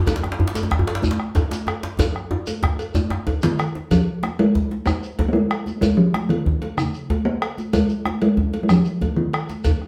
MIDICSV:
0, 0, Header, 1, 6, 480
1, 0, Start_track
1, 0, Tempo, 319149
1, 113, Time_signature, 12, 3, 24, 8
1, 14855, End_track
2, 0, Start_track
2, 0, Title_t, "Talking drum"
2, 0, Program_c, 0, 116
2, 5166, Note_on_c, 0, 51, 88
2, 5609, Note_off_c, 0, 51, 0
2, 5884, Note_on_c, 0, 53, 78
2, 6607, Note_on_c, 0, 56, 88
2, 6629, Note_off_c, 0, 53, 0
2, 7295, Note_off_c, 0, 56, 0
2, 7304, Note_on_c, 0, 58, 97
2, 7948, Note_off_c, 0, 58, 0
2, 7948, Note_on_c, 0, 58, 69
2, 8017, Note_on_c, 0, 56, 91
2, 8039, Note_off_c, 0, 58, 0
2, 8734, Note_off_c, 0, 56, 0
2, 8743, Note_on_c, 0, 56, 86
2, 8974, Note_off_c, 0, 56, 0
2, 8980, Note_on_c, 0, 53, 88
2, 9462, Note_on_c, 0, 51, 77
2, 9485, Note_off_c, 0, 53, 0
2, 10190, Note_on_c, 0, 49, 83
2, 10212, Note_off_c, 0, 51, 0
2, 10898, Note_off_c, 0, 49, 0
2, 10907, Note_on_c, 0, 58, 93
2, 11630, Note_on_c, 0, 56, 82
2, 11653, Note_off_c, 0, 58, 0
2, 12352, Note_off_c, 0, 56, 0
2, 12361, Note_on_c, 0, 56, 79
2, 12983, Note_off_c, 0, 56, 0
2, 12983, Note_on_c, 0, 56, 62
2, 13091, Note_on_c, 0, 53, 87
2, 13113, Note_off_c, 0, 56, 0
2, 13784, Note_on_c, 0, 51, 83
2, 13806, Note_off_c, 0, 53, 0
2, 14512, Note_on_c, 0, 49, 64
2, 14534, Note_off_c, 0, 51, 0
2, 14855, Note_off_c, 0, 49, 0
2, 14855, End_track
3, 0, Start_track
3, 0, Title_t, "Bombo"
3, 105, Note_on_c, 9, 43, 89
3, 255, Note_off_c, 9, 43, 0
3, 353, Note_on_c, 9, 37, 77
3, 504, Note_off_c, 9, 37, 0
3, 1077, Note_on_c, 9, 37, 100
3, 1077, Note_on_c, 9, 43, 100
3, 1227, Note_off_c, 9, 37, 0
3, 1227, Note_off_c, 9, 43, 0
3, 1798, Note_on_c, 9, 37, 69
3, 1949, Note_off_c, 9, 37, 0
3, 2044, Note_on_c, 9, 43, 90
3, 2195, Note_off_c, 9, 43, 0
3, 2527, Note_on_c, 9, 37, 88
3, 2677, Note_off_c, 9, 37, 0
3, 3000, Note_on_c, 9, 43, 81
3, 3150, Note_off_c, 9, 43, 0
3, 3245, Note_on_c, 9, 37, 66
3, 3396, Note_off_c, 9, 37, 0
3, 3965, Note_on_c, 9, 37, 97
3, 3965, Note_on_c, 9, 43, 102
3, 4115, Note_off_c, 9, 37, 0
3, 4115, Note_off_c, 9, 43, 0
3, 4682, Note_on_c, 9, 37, 74
3, 4833, Note_off_c, 9, 37, 0
3, 4920, Note_on_c, 9, 37, 30
3, 4920, Note_on_c, 9, 43, 98
3, 5070, Note_off_c, 9, 37, 0
3, 5070, Note_off_c, 9, 43, 0
3, 5408, Note_on_c, 9, 37, 100
3, 5558, Note_off_c, 9, 37, 0
3, 5889, Note_on_c, 9, 43, 81
3, 6039, Note_off_c, 9, 43, 0
3, 6369, Note_on_c, 9, 37, 84
3, 6520, Note_off_c, 9, 37, 0
3, 6847, Note_on_c, 9, 43, 93
3, 6997, Note_off_c, 9, 43, 0
3, 7328, Note_on_c, 9, 37, 87
3, 7479, Note_off_c, 9, 37, 0
3, 7807, Note_on_c, 9, 43, 94
3, 7957, Note_off_c, 9, 43, 0
3, 8285, Note_on_c, 9, 37, 95
3, 8435, Note_off_c, 9, 37, 0
3, 8756, Note_on_c, 9, 43, 86
3, 8907, Note_off_c, 9, 43, 0
3, 9239, Note_on_c, 9, 37, 96
3, 9390, Note_off_c, 9, 37, 0
3, 9720, Note_on_c, 9, 43, 103
3, 9870, Note_off_c, 9, 43, 0
3, 10195, Note_on_c, 9, 37, 102
3, 10345, Note_off_c, 9, 37, 0
3, 10676, Note_on_c, 9, 43, 90
3, 10826, Note_off_c, 9, 43, 0
3, 11160, Note_on_c, 9, 37, 106
3, 11310, Note_off_c, 9, 37, 0
3, 11635, Note_on_c, 9, 43, 92
3, 11785, Note_off_c, 9, 43, 0
3, 12115, Note_on_c, 9, 37, 98
3, 12265, Note_off_c, 9, 37, 0
3, 12593, Note_on_c, 9, 43, 104
3, 12743, Note_off_c, 9, 43, 0
3, 13073, Note_on_c, 9, 37, 106
3, 13223, Note_off_c, 9, 37, 0
3, 13562, Note_on_c, 9, 43, 99
3, 13712, Note_off_c, 9, 43, 0
3, 14049, Note_on_c, 9, 37, 111
3, 14199, Note_off_c, 9, 37, 0
3, 14523, Note_on_c, 9, 43, 99
3, 14673, Note_off_c, 9, 43, 0
3, 14763, Note_on_c, 9, 37, 32
3, 14855, Note_off_c, 9, 37, 0
3, 14855, End_track
4, 0, Start_track
4, 0, Title_t, "Djembe"
4, 103, Note_on_c, 9, 64, 62
4, 111, Note_on_c, 9, 62, 73
4, 237, Note_off_c, 9, 62, 0
4, 237, Note_on_c, 9, 62, 76
4, 253, Note_off_c, 9, 64, 0
4, 361, Note_on_c, 9, 63, 79
4, 387, Note_off_c, 9, 62, 0
4, 478, Note_on_c, 9, 62, 80
4, 511, Note_off_c, 9, 63, 0
4, 590, Note_on_c, 9, 63, 68
4, 598, Note_on_c, 9, 64, 96
4, 629, Note_off_c, 9, 62, 0
4, 714, Note_on_c, 9, 62, 81
4, 740, Note_off_c, 9, 63, 0
4, 748, Note_off_c, 9, 64, 0
4, 833, Note_off_c, 9, 62, 0
4, 833, Note_on_c, 9, 62, 77
4, 838, Note_off_c, 9, 62, 0
4, 838, Note_on_c, 9, 62, 47
4, 949, Note_on_c, 9, 63, 74
4, 988, Note_off_c, 9, 62, 0
4, 1070, Note_on_c, 9, 62, 74
4, 1100, Note_off_c, 9, 63, 0
4, 1191, Note_on_c, 9, 64, 100
4, 1220, Note_off_c, 9, 62, 0
4, 1314, Note_on_c, 9, 62, 81
4, 1341, Note_off_c, 9, 64, 0
4, 1430, Note_off_c, 9, 62, 0
4, 1430, Note_on_c, 9, 62, 76
4, 1550, Note_on_c, 9, 63, 77
4, 1561, Note_on_c, 9, 64, 71
4, 1580, Note_off_c, 9, 62, 0
4, 1668, Note_on_c, 9, 62, 80
4, 1701, Note_off_c, 9, 63, 0
4, 1711, Note_off_c, 9, 64, 0
4, 1818, Note_off_c, 9, 62, 0
4, 2033, Note_on_c, 9, 63, 107
4, 2048, Note_off_c, 9, 63, 0
4, 2048, Note_on_c, 9, 63, 74
4, 2198, Note_off_c, 9, 63, 0
4, 2277, Note_on_c, 9, 62, 79
4, 2427, Note_off_c, 9, 62, 0
4, 2508, Note_on_c, 9, 63, 75
4, 2658, Note_off_c, 9, 63, 0
4, 2755, Note_on_c, 9, 62, 56
4, 2757, Note_off_c, 9, 62, 0
4, 2757, Note_on_c, 9, 62, 80
4, 2907, Note_off_c, 9, 62, 0
4, 2997, Note_on_c, 9, 63, 96
4, 2997, Note_on_c, 9, 64, 67
4, 3147, Note_off_c, 9, 63, 0
4, 3147, Note_off_c, 9, 64, 0
4, 3470, Note_on_c, 9, 63, 100
4, 3481, Note_off_c, 9, 63, 0
4, 3481, Note_on_c, 9, 63, 67
4, 3631, Note_off_c, 9, 63, 0
4, 3717, Note_on_c, 9, 62, 49
4, 3867, Note_off_c, 9, 62, 0
4, 3950, Note_on_c, 9, 63, 101
4, 4100, Note_off_c, 9, 63, 0
4, 4199, Note_on_c, 9, 62, 24
4, 4349, Note_off_c, 9, 62, 0
4, 4431, Note_on_c, 9, 64, 73
4, 4435, Note_on_c, 9, 63, 92
4, 4581, Note_off_c, 9, 64, 0
4, 4586, Note_off_c, 9, 63, 0
4, 4668, Note_on_c, 9, 63, 102
4, 4673, Note_on_c, 9, 62, 56
4, 4818, Note_off_c, 9, 63, 0
4, 4823, Note_off_c, 9, 62, 0
4, 4914, Note_on_c, 9, 63, 76
4, 5064, Note_off_c, 9, 63, 0
4, 5161, Note_on_c, 9, 62, 97
4, 5311, Note_off_c, 9, 62, 0
4, 5403, Note_on_c, 9, 62, 23
4, 5554, Note_off_c, 9, 62, 0
4, 5645, Note_on_c, 9, 62, 62
4, 5795, Note_off_c, 9, 62, 0
4, 5881, Note_on_c, 9, 62, 22
4, 5881, Note_on_c, 9, 64, 70
4, 6031, Note_off_c, 9, 62, 0
4, 6031, Note_off_c, 9, 64, 0
4, 6361, Note_on_c, 9, 62, 72
4, 6512, Note_off_c, 9, 62, 0
4, 6603, Note_on_c, 9, 63, 50
4, 6754, Note_off_c, 9, 63, 0
4, 6839, Note_on_c, 9, 62, 21
4, 6989, Note_off_c, 9, 62, 0
4, 7090, Note_on_c, 9, 62, 54
4, 7240, Note_off_c, 9, 62, 0
4, 7327, Note_on_c, 9, 64, 73
4, 7477, Note_off_c, 9, 64, 0
4, 7804, Note_on_c, 9, 62, 72
4, 7954, Note_off_c, 9, 62, 0
4, 8055, Note_on_c, 9, 62, 25
4, 8055, Note_on_c, 9, 63, 58
4, 8205, Note_off_c, 9, 62, 0
4, 8205, Note_off_c, 9, 63, 0
4, 8291, Note_on_c, 9, 62, 22
4, 8441, Note_off_c, 9, 62, 0
4, 8531, Note_on_c, 9, 62, 57
4, 8681, Note_off_c, 9, 62, 0
4, 8768, Note_on_c, 9, 62, 23
4, 8768, Note_on_c, 9, 64, 68
4, 8918, Note_off_c, 9, 62, 0
4, 8918, Note_off_c, 9, 64, 0
4, 9243, Note_on_c, 9, 62, 69
4, 9393, Note_off_c, 9, 62, 0
4, 9482, Note_on_c, 9, 63, 52
4, 9633, Note_off_c, 9, 63, 0
4, 9725, Note_on_c, 9, 62, 21
4, 9875, Note_off_c, 9, 62, 0
4, 9965, Note_on_c, 9, 62, 51
4, 10115, Note_off_c, 9, 62, 0
4, 10204, Note_on_c, 9, 64, 66
4, 10355, Note_off_c, 9, 64, 0
4, 10680, Note_on_c, 9, 62, 63
4, 10830, Note_off_c, 9, 62, 0
4, 10926, Note_on_c, 9, 62, 20
4, 10926, Note_on_c, 9, 63, 50
4, 11077, Note_off_c, 9, 62, 0
4, 11077, Note_off_c, 9, 63, 0
4, 11167, Note_on_c, 9, 62, 19
4, 11317, Note_off_c, 9, 62, 0
4, 11405, Note_on_c, 9, 62, 47
4, 11556, Note_off_c, 9, 62, 0
4, 11643, Note_on_c, 9, 62, 19
4, 11643, Note_on_c, 9, 64, 57
4, 11793, Note_off_c, 9, 62, 0
4, 11793, Note_off_c, 9, 64, 0
4, 12128, Note_on_c, 9, 62, 65
4, 12278, Note_off_c, 9, 62, 0
4, 12364, Note_on_c, 9, 63, 47
4, 12515, Note_off_c, 9, 63, 0
4, 12607, Note_on_c, 9, 62, 21
4, 12757, Note_off_c, 9, 62, 0
4, 12843, Note_on_c, 9, 62, 48
4, 12994, Note_off_c, 9, 62, 0
4, 13083, Note_on_c, 9, 64, 68
4, 13233, Note_off_c, 9, 64, 0
4, 13811, Note_on_c, 9, 62, 26
4, 13811, Note_on_c, 9, 63, 61
4, 13961, Note_off_c, 9, 62, 0
4, 13961, Note_off_c, 9, 63, 0
4, 14045, Note_on_c, 9, 62, 23
4, 14196, Note_off_c, 9, 62, 0
4, 14282, Note_on_c, 9, 62, 61
4, 14432, Note_off_c, 9, 62, 0
4, 14526, Note_on_c, 9, 62, 25
4, 14526, Note_on_c, 9, 64, 80
4, 14677, Note_off_c, 9, 62, 0
4, 14677, Note_off_c, 9, 64, 0
4, 14769, Note_on_c, 9, 62, 26
4, 14855, Note_off_c, 9, 62, 0
4, 14855, End_track
5, 0, Start_track
5, 0, Title_t, "Shekere"
5, 103, Note_on_c, 9, 82, 57
5, 253, Note_off_c, 9, 82, 0
5, 835, Note_on_c, 9, 82, 46
5, 985, Note_off_c, 9, 82, 0
5, 1559, Note_on_c, 9, 82, 62
5, 1710, Note_off_c, 9, 82, 0
5, 2047, Note_on_c, 9, 82, 18
5, 2197, Note_off_c, 9, 82, 0
5, 2297, Note_on_c, 9, 82, 42
5, 2447, Note_off_c, 9, 82, 0
5, 3005, Note_on_c, 9, 82, 57
5, 3155, Note_off_c, 9, 82, 0
5, 3710, Note_on_c, 9, 82, 45
5, 3860, Note_off_c, 9, 82, 0
5, 4203, Note_on_c, 9, 82, 18
5, 4354, Note_off_c, 9, 82, 0
5, 4430, Note_on_c, 9, 82, 58
5, 4580, Note_off_c, 9, 82, 0
5, 5148, Note_on_c, 9, 82, 44
5, 5298, Note_off_c, 9, 82, 0
5, 5396, Note_on_c, 9, 82, 18
5, 5546, Note_off_c, 9, 82, 0
5, 5886, Note_on_c, 9, 82, 58
5, 6037, Note_off_c, 9, 82, 0
5, 7314, Note_on_c, 9, 82, 56
5, 7464, Note_off_c, 9, 82, 0
5, 7570, Note_on_c, 9, 82, 17
5, 7720, Note_off_c, 9, 82, 0
5, 8527, Note_on_c, 9, 82, 16
5, 8677, Note_off_c, 9, 82, 0
5, 8758, Note_on_c, 9, 82, 55
5, 8908, Note_off_c, 9, 82, 0
5, 10199, Note_on_c, 9, 82, 54
5, 10349, Note_off_c, 9, 82, 0
5, 10439, Note_on_c, 9, 82, 17
5, 10589, Note_off_c, 9, 82, 0
5, 11401, Note_on_c, 9, 82, 14
5, 11551, Note_off_c, 9, 82, 0
5, 11633, Note_on_c, 9, 82, 56
5, 11783, Note_off_c, 9, 82, 0
5, 11870, Note_on_c, 9, 82, 16
5, 12021, Note_off_c, 9, 82, 0
5, 13075, Note_on_c, 9, 82, 58
5, 13225, Note_off_c, 9, 82, 0
5, 13307, Note_on_c, 9, 82, 17
5, 13457, Note_off_c, 9, 82, 0
5, 14268, Note_on_c, 9, 82, 17
5, 14418, Note_off_c, 9, 82, 0
5, 14504, Note_on_c, 9, 82, 61
5, 14654, Note_off_c, 9, 82, 0
5, 14855, End_track
6, 0, Start_track
6, 0, Title_t, "Drums"
6, 100, Note_on_c, 9, 63, 66
6, 100, Note_on_c, 9, 64, 73
6, 111, Note_on_c, 9, 56, 68
6, 251, Note_off_c, 9, 63, 0
6, 251, Note_off_c, 9, 64, 0
6, 262, Note_off_c, 9, 56, 0
6, 820, Note_on_c, 9, 63, 57
6, 832, Note_on_c, 9, 56, 53
6, 971, Note_off_c, 9, 63, 0
6, 982, Note_off_c, 9, 56, 0
6, 1061, Note_on_c, 9, 64, 72
6, 1212, Note_off_c, 9, 64, 0
6, 1316, Note_on_c, 9, 56, 51
6, 1466, Note_off_c, 9, 56, 0
6, 1541, Note_on_c, 9, 63, 76
6, 1691, Note_off_c, 9, 63, 0
6, 2028, Note_on_c, 9, 63, 25
6, 2028, Note_on_c, 9, 64, 76
6, 2044, Note_on_c, 9, 56, 52
6, 2178, Note_off_c, 9, 63, 0
6, 2178, Note_off_c, 9, 64, 0
6, 2194, Note_off_c, 9, 56, 0
6, 2270, Note_on_c, 9, 63, 61
6, 2421, Note_off_c, 9, 63, 0
6, 2525, Note_on_c, 9, 56, 50
6, 2675, Note_off_c, 9, 56, 0
6, 2990, Note_on_c, 9, 63, 76
6, 2990, Note_on_c, 9, 64, 73
6, 3001, Note_on_c, 9, 56, 77
6, 3140, Note_off_c, 9, 63, 0
6, 3140, Note_off_c, 9, 64, 0
6, 3151, Note_off_c, 9, 56, 0
6, 3719, Note_on_c, 9, 56, 50
6, 3723, Note_on_c, 9, 63, 59
6, 3869, Note_off_c, 9, 56, 0
6, 3874, Note_off_c, 9, 63, 0
6, 3959, Note_on_c, 9, 64, 76
6, 4109, Note_off_c, 9, 64, 0
6, 4199, Note_on_c, 9, 56, 48
6, 4350, Note_off_c, 9, 56, 0
6, 4438, Note_on_c, 9, 63, 69
6, 4589, Note_off_c, 9, 63, 0
6, 4678, Note_on_c, 9, 63, 23
6, 4828, Note_off_c, 9, 63, 0
6, 4913, Note_on_c, 9, 64, 70
6, 4920, Note_on_c, 9, 56, 46
6, 5064, Note_off_c, 9, 64, 0
6, 5070, Note_off_c, 9, 56, 0
6, 5159, Note_on_c, 9, 63, 55
6, 5309, Note_off_c, 9, 63, 0
6, 5402, Note_on_c, 9, 56, 46
6, 5552, Note_off_c, 9, 56, 0
6, 5650, Note_on_c, 9, 63, 24
6, 5800, Note_off_c, 9, 63, 0
6, 5878, Note_on_c, 9, 64, 67
6, 5884, Note_on_c, 9, 56, 68
6, 6029, Note_off_c, 9, 64, 0
6, 6035, Note_off_c, 9, 56, 0
6, 6358, Note_on_c, 9, 63, 66
6, 6508, Note_off_c, 9, 63, 0
6, 6606, Note_on_c, 9, 56, 48
6, 6756, Note_off_c, 9, 56, 0
6, 6847, Note_on_c, 9, 64, 72
6, 6998, Note_off_c, 9, 64, 0
6, 7085, Note_on_c, 9, 63, 55
6, 7235, Note_off_c, 9, 63, 0
6, 7800, Note_on_c, 9, 56, 41
6, 7807, Note_on_c, 9, 63, 72
6, 7807, Note_on_c, 9, 64, 78
6, 7951, Note_off_c, 9, 56, 0
6, 7957, Note_off_c, 9, 63, 0
6, 7957, Note_off_c, 9, 64, 0
6, 8282, Note_on_c, 9, 56, 43
6, 8287, Note_on_c, 9, 63, 23
6, 8433, Note_off_c, 9, 56, 0
6, 8437, Note_off_c, 9, 63, 0
6, 8517, Note_on_c, 9, 63, 59
6, 8667, Note_off_c, 9, 63, 0
6, 8753, Note_on_c, 9, 64, 76
6, 8765, Note_on_c, 9, 56, 57
6, 8903, Note_off_c, 9, 64, 0
6, 8916, Note_off_c, 9, 56, 0
6, 9237, Note_on_c, 9, 63, 74
6, 9388, Note_off_c, 9, 63, 0
6, 9479, Note_on_c, 9, 56, 48
6, 9629, Note_off_c, 9, 56, 0
6, 9722, Note_on_c, 9, 64, 81
6, 9872, Note_off_c, 9, 64, 0
6, 9953, Note_on_c, 9, 56, 45
6, 9955, Note_on_c, 9, 63, 57
6, 10104, Note_off_c, 9, 56, 0
6, 10106, Note_off_c, 9, 63, 0
6, 10678, Note_on_c, 9, 63, 76
6, 10680, Note_on_c, 9, 56, 46
6, 10829, Note_off_c, 9, 63, 0
6, 10830, Note_off_c, 9, 56, 0
6, 11154, Note_on_c, 9, 63, 24
6, 11159, Note_on_c, 9, 56, 48
6, 11304, Note_off_c, 9, 63, 0
6, 11310, Note_off_c, 9, 56, 0
6, 11399, Note_on_c, 9, 63, 64
6, 11550, Note_off_c, 9, 63, 0
6, 11630, Note_on_c, 9, 64, 69
6, 11633, Note_on_c, 9, 56, 69
6, 11781, Note_off_c, 9, 64, 0
6, 11783, Note_off_c, 9, 56, 0
6, 12113, Note_on_c, 9, 63, 65
6, 12264, Note_off_c, 9, 63, 0
6, 12357, Note_on_c, 9, 56, 50
6, 12507, Note_off_c, 9, 56, 0
6, 12590, Note_on_c, 9, 64, 79
6, 12740, Note_off_c, 9, 64, 0
6, 12831, Note_on_c, 9, 63, 58
6, 12839, Note_on_c, 9, 56, 45
6, 12982, Note_off_c, 9, 63, 0
6, 12989, Note_off_c, 9, 56, 0
6, 13557, Note_on_c, 9, 63, 75
6, 13557, Note_on_c, 9, 64, 76
6, 13567, Note_on_c, 9, 56, 45
6, 13708, Note_off_c, 9, 63, 0
6, 13708, Note_off_c, 9, 64, 0
6, 13717, Note_off_c, 9, 56, 0
6, 14039, Note_on_c, 9, 56, 47
6, 14039, Note_on_c, 9, 63, 23
6, 14189, Note_off_c, 9, 56, 0
6, 14189, Note_off_c, 9, 63, 0
6, 14280, Note_on_c, 9, 63, 58
6, 14431, Note_off_c, 9, 63, 0
6, 14506, Note_on_c, 9, 56, 62
6, 14513, Note_on_c, 9, 63, 22
6, 14513, Note_on_c, 9, 64, 69
6, 14656, Note_off_c, 9, 56, 0
6, 14663, Note_off_c, 9, 63, 0
6, 14663, Note_off_c, 9, 64, 0
6, 14855, End_track
0, 0, End_of_file